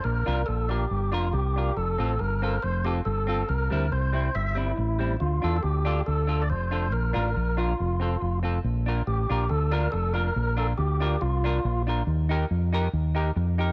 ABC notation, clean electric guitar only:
X:1
M:4/4
L:1/8
Q:1/4=140
K:Bblyd
V:1 name="Clean electric guitar"
z [DFB] z [DFB] z [DFB] z [DFB] | z [CFA] z [CFA] z [CFA] z [CFA] | z [G,CE] z [G,CE] z [G,CE] z [G,CE] | z [DFA] z [DFA] z [DFA] z [DFA] |
z [DFB] z [DFB] z [CFA] z [CFA] | z [DFB] z [DFB] z [DFB] z [DFB] | z [DFB] z [DFB] z [DFB] z [DFB] | z [_EGB] z [EGB] z [EGB] z [EGB] |]